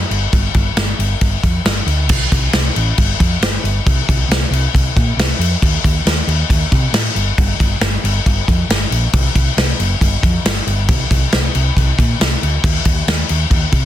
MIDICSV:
0, 0, Header, 1, 3, 480
1, 0, Start_track
1, 0, Tempo, 439560
1, 367, Time_signature, 4, 2, 24, 8
1, 15125, End_track
2, 0, Start_track
2, 0, Title_t, "Fingered electric bass"
2, 0, Program_c, 0, 33
2, 112, Note_on_c, 0, 31, 86
2, 275, Note_off_c, 0, 31, 0
2, 357, Note_on_c, 0, 31, 101
2, 519, Note_off_c, 0, 31, 0
2, 599, Note_on_c, 0, 31, 82
2, 760, Note_off_c, 0, 31, 0
2, 834, Note_on_c, 0, 31, 81
2, 998, Note_off_c, 0, 31, 0
2, 1076, Note_on_c, 0, 31, 93
2, 1240, Note_off_c, 0, 31, 0
2, 1324, Note_on_c, 0, 31, 93
2, 1486, Note_off_c, 0, 31, 0
2, 1567, Note_on_c, 0, 41, 92
2, 1728, Note_off_c, 0, 41, 0
2, 1800, Note_on_c, 0, 31, 91
2, 1963, Note_off_c, 0, 31, 0
2, 2033, Note_on_c, 0, 38, 91
2, 2285, Note_off_c, 0, 38, 0
2, 2285, Note_on_c, 0, 36, 94
2, 2448, Note_off_c, 0, 36, 0
2, 2532, Note_on_c, 0, 36, 95
2, 2693, Note_off_c, 0, 36, 0
2, 2764, Note_on_c, 0, 36, 87
2, 2928, Note_off_c, 0, 36, 0
2, 3012, Note_on_c, 0, 33, 89
2, 3174, Note_off_c, 0, 33, 0
2, 3255, Note_on_c, 0, 31, 98
2, 3416, Note_off_c, 0, 31, 0
2, 3492, Note_on_c, 0, 41, 100
2, 3654, Note_off_c, 0, 41, 0
2, 3723, Note_on_c, 0, 31, 87
2, 3888, Note_off_c, 0, 31, 0
2, 3968, Note_on_c, 0, 31, 97
2, 4132, Note_off_c, 0, 31, 0
2, 4213, Note_on_c, 0, 36, 100
2, 4375, Note_off_c, 0, 36, 0
2, 4462, Note_on_c, 0, 36, 92
2, 4621, Note_off_c, 0, 36, 0
2, 4678, Note_on_c, 0, 36, 87
2, 4845, Note_off_c, 0, 36, 0
2, 4918, Note_on_c, 0, 36, 103
2, 5086, Note_off_c, 0, 36, 0
2, 5173, Note_on_c, 0, 36, 98
2, 5336, Note_off_c, 0, 36, 0
2, 5416, Note_on_c, 0, 46, 96
2, 5578, Note_off_c, 0, 46, 0
2, 5641, Note_on_c, 0, 36, 98
2, 5808, Note_off_c, 0, 36, 0
2, 5882, Note_on_c, 0, 41, 103
2, 6048, Note_off_c, 0, 41, 0
2, 6136, Note_on_c, 0, 39, 93
2, 6298, Note_off_c, 0, 39, 0
2, 6383, Note_on_c, 0, 39, 91
2, 6543, Note_off_c, 0, 39, 0
2, 6610, Note_on_c, 0, 39, 93
2, 6774, Note_off_c, 0, 39, 0
2, 6848, Note_on_c, 0, 39, 99
2, 7013, Note_off_c, 0, 39, 0
2, 7089, Note_on_c, 0, 39, 97
2, 7253, Note_off_c, 0, 39, 0
2, 7334, Note_on_c, 0, 48, 101
2, 7496, Note_off_c, 0, 48, 0
2, 7563, Note_on_c, 0, 45, 93
2, 7729, Note_off_c, 0, 45, 0
2, 7809, Note_on_c, 0, 31, 99
2, 7973, Note_off_c, 0, 31, 0
2, 8056, Note_on_c, 0, 31, 104
2, 8217, Note_off_c, 0, 31, 0
2, 8295, Note_on_c, 0, 31, 83
2, 8457, Note_off_c, 0, 31, 0
2, 8525, Note_on_c, 0, 31, 89
2, 8690, Note_off_c, 0, 31, 0
2, 8775, Note_on_c, 0, 31, 97
2, 8936, Note_off_c, 0, 31, 0
2, 9019, Note_on_c, 0, 31, 95
2, 9179, Note_off_c, 0, 31, 0
2, 9260, Note_on_c, 0, 41, 96
2, 9419, Note_off_c, 0, 41, 0
2, 9487, Note_on_c, 0, 31, 94
2, 9650, Note_off_c, 0, 31, 0
2, 9727, Note_on_c, 0, 34, 100
2, 9890, Note_off_c, 0, 34, 0
2, 9971, Note_on_c, 0, 36, 89
2, 10133, Note_off_c, 0, 36, 0
2, 10209, Note_on_c, 0, 36, 86
2, 10371, Note_off_c, 0, 36, 0
2, 10450, Note_on_c, 0, 36, 91
2, 10611, Note_off_c, 0, 36, 0
2, 10694, Note_on_c, 0, 30, 91
2, 10854, Note_off_c, 0, 30, 0
2, 10928, Note_on_c, 0, 31, 93
2, 11089, Note_off_c, 0, 31, 0
2, 11166, Note_on_c, 0, 41, 104
2, 11328, Note_off_c, 0, 41, 0
2, 11404, Note_on_c, 0, 31, 99
2, 11566, Note_off_c, 0, 31, 0
2, 11646, Note_on_c, 0, 31, 101
2, 11884, Note_on_c, 0, 36, 86
2, 11900, Note_off_c, 0, 31, 0
2, 12045, Note_off_c, 0, 36, 0
2, 12125, Note_on_c, 0, 36, 85
2, 12286, Note_off_c, 0, 36, 0
2, 12373, Note_on_c, 0, 36, 93
2, 12530, Note_off_c, 0, 36, 0
2, 12612, Note_on_c, 0, 36, 91
2, 12770, Note_off_c, 0, 36, 0
2, 12846, Note_on_c, 0, 36, 94
2, 13005, Note_off_c, 0, 36, 0
2, 13088, Note_on_c, 0, 46, 101
2, 13246, Note_off_c, 0, 46, 0
2, 13319, Note_on_c, 0, 36, 98
2, 13480, Note_off_c, 0, 36, 0
2, 13568, Note_on_c, 0, 38, 95
2, 13725, Note_off_c, 0, 38, 0
2, 13802, Note_on_c, 0, 39, 96
2, 13960, Note_off_c, 0, 39, 0
2, 14038, Note_on_c, 0, 39, 89
2, 14197, Note_off_c, 0, 39, 0
2, 14276, Note_on_c, 0, 39, 85
2, 14436, Note_off_c, 0, 39, 0
2, 14524, Note_on_c, 0, 39, 92
2, 14681, Note_off_c, 0, 39, 0
2, 14743, Note_on_c, 0, 39, 99
2, 14906, Note_off_c, 0, 39, 0
2, 14982, Note_on_c, 0, 48, 103
2, 15125, Note_off_c, 0, 48, 0
2, 15125, End_track
3, 0, Start_track
3, 0, Title_t, "Drums"
3, 121, Note_on_c, 9, 49, 59
3, 230, Note_off_c, 9, 49, 0
3, 359, Note_on_c, 9, 49, 67
3, 360, Note_on_c, 9, 36, 107
3, 468, Note_off_c, 9, 49, 0
3, 469, Note_off_c, 9, 36, 0
3, 594, Note_on_c, 9, 49, 62
3, 598, Note_on_c, 9, 36, 87
3, 703, Note_off_c, 9, 49, 0
3, 707, Note_off_c, 9, 36, 0
3, 838, Note_on_c, 9, 49, 72
3, 842, Note_on_c, 9, 38, 107
3, 947, Note_off_c, 9, 49, 0
3, 951, Note_off_c, 9, 38, 0
3, 1088, Note_on_c, 9, 49, 60
3, 1197, Note_off_c, 9, 49, 0
3, 1322, Note_on_c, 9, 49, 75
3, 1325, Note_on_c, 9, 36, 77
3, 1431, Note_off_c, 9, 49, 0
3, 1435, Note_off_c, 9, 36, 0
3, 1566, Note_on_c, 9, 36, 80
3, 1566, Note_on_c, 9, 49, 57
3, 1675, Note_off_c, 9, 49, 0
3, 1676, Note_off_c, 9, 36, 0
3, 1806, Note_on_c, 9, 49, 82
3, 1811, Note_on_c, 9, 38, 113
3, 1915, Note_off_c, 9, 49, 0
3, 1920, Note_off_c, 9, 38, 0
3, 2047, Note_on_c, 9, 49, 63
3, 2157, Note_off_c, 9, 49, 0
3, 2282, Note_on_c, 9, 49, 83
3, 2282, Note_on_c, 9, 57, 113
3, 2290, Note_on_c, 9, 36, 118
3, 2392, Note_off_c, 9, 49, 0
3, 2392, Note_off_c, 9, 57, 0
3, 2399, Note_off_c, 9, 36, 0
3, 2533, Note_on_c, 9, 36, 96
3, 2534, Note_on_c, 9, 49, 73
3, 2642, Note_off_c, 9, 36, 0
3, 2643, Note_off_c, 9, 49, 0
3, 2764, Note_on_c, 9, 49, 85
3, 2768, Note_on_c, 9, 38, 109
3, 2873, Note_off_c, 9, 49, 0
3, 2877, Note_off_c, 9, 38, 0
3, 3014, Note_on_c, 9, 49, 65
3, 3123, Note_off_c, 9, 49, 0
3, 3251, Note_on_c, 9, 49, 80
3, 3255, Note_on_c, 9, 36, 91
3, 3360, Note_off_c, 9, 49, 0
3, 3364, Note_off_c, 9, 36, 0
3, 3496, Note_on_c, 9, 49, 65
3, 3497, Note_on_c, 9, 36, 95
3, 3605, Note_off_c, 9, 49, 0
3, 3606, Note_off_c, 9, 36, 0
3, 3739, Note_on_c, 9, 49, 85
3, 3743, Note_on_c, 9, 38, 122
3, 3848, Note_off_c, 9, 49, 0
3, 3852, Note_off_c, 9, 38, 0
3, 3985, Note_on_c, 9, 49, 55
3, 4095, Note_off_c, 9, 49, 0
3, 4221, Note_on_c, 9, 36, 111
3, 4224, Note_on_c, 9, 49, 77
3, 4330, Note_off_c, 9, 36, 0
3, 4333, Note_off_c, 9, 49, 0
3, 4464, Note_on_c, 9, 36, 102
3, 4470, Note_on_c, 9, 49, 69
3, 4573, Note_off_c, 9, 36, 0
3, 4579, Note_off_c, 9, 49, 0
3, 4709, Note_on_c, 9, 49, 82
3, 4714, Note_on_c, 9, 38, 121
3, 4818, Note_off_c, 9, 49, 0
3, 4823, Note_off_c, 9, 38, 0
3, 4950, Note_on_c, 9, 49, 68
3, 5059, Note_off_c, 9, 49, 0
3, 5183, Note_on_c, 9, 36, 81
3, 5191, Note_on_c, 9, 49, 84
3, 5292, Note_off_c, 9, 36, 0
3, 5301, Note_off_c, 9, 49, 0
3, 5422, Note_on_c, 9, 36, 91
3, 5427, Note_on_c, 9, 49, 61
3, 5532, Note_off_c, 9, 36, 0
3, 5537, Note_off_c, 9, 49, 0
3, 5670, Note_on_c, 9, 49, 91
3, 5674, Note_on_c, 9, 38, 109
3, 5779, Note_off_c, 9, 49, 0
3, 5783, Note_off_c, 9, 38, 0
3, 5910, Note_on_c, 9, 49, 75
3, 6019, Note_off_c, 9, 49, 0
3, 6141, Note_on_c, 9, 36, 101
3, 6147, Note_on_c, 9, 49, 86
3, 6251, Note_off_c, 9, 36, 0
3, 6256, Note_off_c, 9, 49, 0
3, 6382, Note_on_c, 9, 36, 95
3, 6389, Note_on_c, 9, 49, 75
3, 6491, Note_off_c, 9, 36, 0
3, 6498, Note_off_c, 9, 49, 0
3, 6623, Note_on_c, 9, 49, 87
3, 6627, Note_on_c, 9, 38, 105
3, 6732, Note_off_c, 9, 49, 0
3, 6737, Note_off_c, 9, 38, 0
3, 6863, Note_on_c, 9, 49, 71
3, 6972, Note_off_c, 9, 49, 0
3, 7099, Note_on_c, 9, 36, 85
3, 7101, Note_on_c, 9, 49, 81
3, 7208, Note_off_c, 9, 36, 0
3, 7211, Note_off_c, 9, 49, 0
3, 7337, Note_on_c, 9, 49, 64
3, 7339, Note_on_c, 9, 36, 89
3, 7446, Note_off_c, 9, 49, 0
3, 7448, Note_off_c, 9, 36, 0
3, 7576, Note_on_c, 9, 49, 96
3, 7580, Note_on_c, 9, 38, 124
3, 7685, Note_off_c, 9, 49, 0
3, 7689, Note_off_c, 9, 38, 0
3, 7819, Note_on_c, 9, 49, 61
3, 7928, Note_off_c, 9, 49, 0
3, 8060, Note_on_c, 9, 36, 120
3, 8061, Note_on_c, 9, 49, 80
3, 8169, Note_off_c, 9, 36, 0
3, 8170, Note_off_c, 9, 49, 0
3, 8300, Note_on_c, 9, 36, 89
3, 8306, Note_on_c, 9, 49, 64
3, 8409, Note_off_c, 9, 36, 0
3, 8415, Note_off_c, 9, 49, 0
3, 8530, Note_on_c, 9, 49, 76
3, 8534, Note_on_c, 9, 38, 115
3, 8639, Note_off_c, 9, 49, 0
3, 8643, Note_off_c, 9, 38, 0
3, 8787, Note_on_c, 9, 49, 67
3, 8896, Note_off_c, 9, 49, 0
3, 9021, Note_on_c, 9, 36, 81
3, 9023, Note_on_c, 9, 49, 74
3, 9131, Note_off_c, 9, 36, 0
3, 9132, Note_off_c, 9, 49, 0
3, 9261, Note_on_c, 9, 36, 81
3, 9266, Note_on_c, 9, 49, 59
3, 9371, Note_off_c, 9, 36, 0
3, 9375, Note_off_c, 9, 49, 0
3, 9503, Note_on_c, 9, 49, 89
3, 9507, Note_on_c, 9, 38, 114
3, 9612, Note_off_c, 9, 49, 0
3, 9616, Note_off_c, 9, 38, 0
3, 9742, Note_on_c, 9, 49, 68
3, 9851, Note_off_c, 9, 49, 0
3, 9974, Note_on_c, 9, 49, 91
3, 9977, Note_on_c, 9, 36, 117
3, 10083, Note_off_c, 9, 49, 0
3, 10086, Note_off_c, 9, 36, 0
3, 10215, Note_on_c, 9, 36, 93
3, 10215, Note_on_c, 9, 49, 75
3, 10325, Note_off_c, 9, 36, 0
3, 10325, Note_off_c, 9, 49, 0
3, 10459, Note_on_c, 9, 49, 87
3, 10463, Note_on_c, 9, 38, 109
3, 10568, Note_off_c, 9, 49, 0
3, 10573, Note_off_c, 9, 38, 0
3, 10698, Note_on_c, 9, 49, 70
3, 10807, Note_off_c, 9, 49, 0
3, 10934, Note_on_c, 9, 36, 81
3, 10939, Note_on_c, 9, 49, 80
3, 11043, Note_off_c, 9, 36, 0
3, 11048, Note_off_c, 9, 49, 0
3, 11175, Note_on_c, 9, 36, 89
3, 11181, Note_on_c, 9, 49, 63
3, 11284, Note_off_c, 9, 36, 0
3, 11290, Note_off_c, 9, 49, 0
3, 11417, Note_on_c, 9, 49, 99
3, 11421, Note_on_c, 9, 38, 120
3, 11526, Note_off_c, 9, 49, 0
3, 11530, Note_off_c, 9, 38, 0
3, 11656, Note_on_c, 9, 49, 60
3, 11765, Note_off_c, 9, 49, 0
3, 11889, Note_on_c, 9, 36, 113
3, 11889, Note_on_c, 9, 49, 85
3, 11998, Note_off_c, 9, 36, 0
3, 11998, Note_off_c, 9, 49, 0
3, 12130, Note_on_c, 9, 36, 95
3, 12138, Note_on_c, 9, 49, 70
3, 12239, Note_off_c, 9, 36, 0
3, 12247, Note_off_c, 9, 49, 0
3, 12365, Note_on_c, 9, 49, 71
3, 12370, Note_on_c, 9, 38, 111
3, 12475, Note_off_c, 9, 49, 0
3, 12479, Note_off_c, 9, 38, 0
3, 12609, Note_on_c, 9, 49, 66
3, 12718, Note_off_c, 9, 49, 0
3, 12849, Note_on_c, 9, 36, 81
3, 12860, Note_on_c, 9, 49, 67
3, 12958, Note_off_c, 9, 36, 0
3, 12970, Note_off_c, 9, 49, 0
3, 13088, Note_on_c, 9, 36, 88
3, 13098, Note_on_c, 9, 49, 68
3, 13197, Note_off_c, 9, 36, 0
3, 13207, Note_off_c, 9, 49, 0
3, 13332, Note_on_c, 9, 49, 84
3, 13337, Note_on_c, 9, 38, 110
3, 13441, Note_off_c, 9, 49, 0
3, 13446, Note_off_c, 9, 38, 0
3, 13574, Note_on_c, 9, 49, 63
3, 13683, Note_off_c, 9, 49, 0
3, 13801, Note_on_c, 9, 36, 117
3, 13807, Note_on_c, 9, 49, 95
3, 13910, Note_off_c, 9, 36, 0
3, 13917, Note_off_c, 9, 49, 0
3, 14033, Note_on_c, 9, 49, 78
3, 14038, Note_on_c, 9, 36, 97
3, 14142, Note_off_c, 9, 49, 0
3, 14148, Note_off_c, 9, 36, 0
3, 14283, Note_on_c, 9, 49, 83
3, 14287, Note_on_c, 9, 38, 100
3, 14392, Note_off_c, 9, 49, 0
3, 14397, Note_off_c, 9, 38, 0
3, 14513, Note_on_c, 9, 49, 66
3, 14622, Note_off_c, 9, 49, 0
3, 14751, Note_on_c, 9, 49, 76
3, 14752, Note_on_c, 9, 36, 86
3, 14860, Note_off_c, 9, 49, 0
3, 14861, Note_off_c, 9, 36, 0
3, 14986, Note_on_c, 9, 49, 67
3, 14989, Note_on_c, 9, 36, 90
3, 15095, Note_off_c, 9, 49, 0
3, 15098, Note_off_c, 9, 36, 0
3, 15125, End_track
0, 0, End_of_file